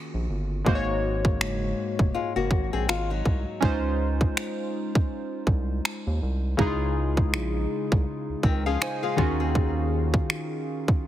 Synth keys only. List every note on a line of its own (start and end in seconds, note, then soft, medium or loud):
0.00 0.24 D#3 medium
0.00 0.25 A#3 medium
0.00 0.27 C#4 medium
0.00 0.25 F4 medium
0.00 0.26 F#4 medium
0.00 0.26 G#4 medium
0.65 3.58 G#2 medium
0.65 3.58 G#3 medium
0.65 3.59 A#3 medium
0.65 3.59 F#4 medium
0.65 0.75 C5 medium
0.75 3.63 C#5 medium
3.60 6.54 G#3 medium
3.60 6.54 C#4 medium
3.60 6.55 D#4 medium
3.60 6.55 F4 medium
3.65 6.56 C5 medium
6.57 9.13 C#3 medium
6.57 9.14 G#3 medium
6.57 9.14 D#4 medium
6.57 6.67 E4 medium
6.61 8.42 G#4 medium
6.67 9.16 F4 medium
8.66 8.81 G#4 medium
8.66 8.81 F5 medium
8.82 9.02 C5 medium
8.82 9.02 G#5 medium
9.03 9.18 G#4 medium
9.03 9.38 F5 medium
9.16 11.07 D#3 medium
9.16 11.07 C#4 medium
9.16 11.07 D#4 medium
9.16 11.07 F4 medium
9.16 11.07 F#4 medium
9.16 11.07 G#4 medium